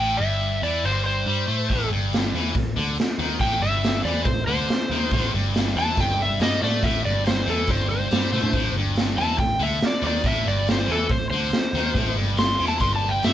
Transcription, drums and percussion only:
1.70 kick, open hi-hat
2.13 snare, open hi-hat
2.55 kick, open hi-hat
2.98 snare, open hi-hat
3.39 kick, open hi-hat
3.83 snare, open hi-hat
4.25 kick, open hi-hat
4.69 snare, open hi-hat
5.11 kick, open hi-hat
5.54 snare, open hi-hat
5.97 kick, open hi-hat
6.40 snare, open hi-hat
6.83 kick, open hi-hat
7.26 snare, open hi-hat
7.67 kick, open hi-hat
8.11 snare, open hi-hat
8.32 high tom
8.42 floor tom
8.53 kick, open hi-hat
8.96 snare, open hi-hat
9.38 kick, open hi-hat
9.81 snare, open hi-hat
10.23 kick, open hi-hat
10.67 snare, open hi-hat
11.09 kick, open hi-hat
11.51 snare, open hi-hat
11.95 kick, open hi-hat
12.37 snare, open hi-hat
12.80 kick, open hi-hat
13.23 snare, open hi-hat

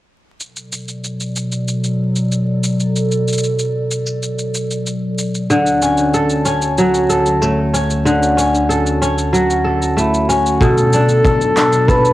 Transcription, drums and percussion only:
0.40 shaker
0.56 shaker
0.72 shaker
0.88 shaker
1.04 shaker
1.20 shaker
1.36 shaker
1.52 shaker
1.68 shaker
1.84 shaker
2.16 shaker
2.32 shaker
2.64 shaker
2.80 shaker
2.96 shaker
3.12 shaker
3.28 shaker
3.33 shaker
3.38 shaker
3.44 shaker
3.59 shaker
3.91 shaker
4.07 shaker
4.23 shaker
4.39 shaker
4.55 shaker
4.71 shaker
4.87 shaker
5.19 shaker
5.35 shaker
5.50 shaker
5.67 shaker
5.82 shaker
5.98 shaker
6.14 shaker
6.30 shaker
6.46 shaker
6.62 shaker
6.78 shaker
6.94 shaker
7.10 shaker
7.26 shaker
7.42 shaker
7.74 shaker
7.90 shaker
8.07 shaker
8.23 shaker
8.39 shaker
8.55 shaker
8.71 shaker
8.87 shaker
9.02 shaker
9.18 shaker
9.34 shaker
9.50 shaker
9.82 shaker
9.98 shaker
10.14 shaker
10.30 shaker
10.46 shaker
10.61 kick, shaker
10.78 shaker
10.93 shaker
11.09 shaker
11.25 kick, shaker
11.41 shaker
11.57 clap, shaker
11.73 shaker
11.88 kick, shaker
12.05 shaker

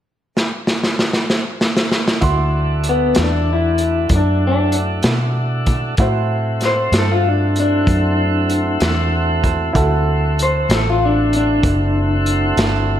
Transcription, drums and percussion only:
0.37 snare
0.67 snare
0.83 snare
0.99 snare
1.13 snare
1.30 snare
1.61 snare
1.77 snare
1.92 snare
2.08 snare
2.22 kick, closed hi-hat
2.84 closed hi-hat
3.15 snare, closed hi-hat
3.78 closed hi-hat
4.09 kick, closed hi-hat
4.72 closed hi-hat
5.03 snare, closed hi-hat
5.66 kick, closed hi-hat
5.97 kick, closed hi-hat
6.61 snare, closed hi-hat
6.93 snare, closed hi-hat
7.56 closed hi-hat
7.87 kick, closed hi-hat
8.50 closed hi-hat
8.80 snare, closed hi-hat
9.44 kick, closed hi-hat
9.75 kick, closed hi-hat
10.39 closed hi-hat
10.70 snare, closed hi-hat
11.33 closed hi-hat
11.63 kick, closed hi-hat
12.26 closed hi-hat
12.57 snare, closed hi-hat

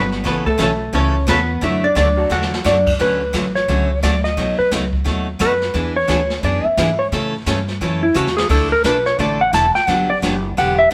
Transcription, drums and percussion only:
0.12 snare
0.25 brush sweep, kick, snare
0.46 kick
0.59 snare, hi-hat pedal
0.93 brush sweep, kick, snare
1.27 kick, snare, hi-hat pedal
1.62 brush sweep, kick, snare
1.96 kick, snare, hi-hat pedal
2.31 snare
2.42 snare
2.54 snare
2.65 snare, hi-hat pedal
2.87 kick, crash
2.99 brush sweep, snare
3.34 kick, snare, hi-hat pedal
3.55 snare
3.68 brush sweep, kick, snare
4.03 kick, snare, hi-hat pedal
4.25 snare
4.37 brush sweep, kick, snare
4.71 kick, snare, hi-hat pedal
4.93 kick
5.06 brush sweep, snare
5.40 kick, snare, hi-hat pedal
5.61 snare
5.74 brush sweep, kick, snare
6.09 kick, snare, hi-hat pedal
6.30 snare
6.43 brush sweep, kick, snare
6.77 kick, snare, hi-hat pedal
7.12 brush sweep, kick, snare
7.46 kick, snare, hi-hat pedal
7.68 snare
7.81 brush sweep, kick, snare
8.15 hi-hat pedal
8.27 snare
8.38 snare
8.50 brush sweep, kick, snare, crash
8.84 kick, snare, hi-hat pedal
9.06 snare
9.19 brush sweep, kick, snare
9.53 kick, snare, hi-hat pedal
9.75 snare
9.88 brush sweep, kick, snare
10.23 kick, snare, hi-hat pedal
10.57 brush sweep, kick, snare

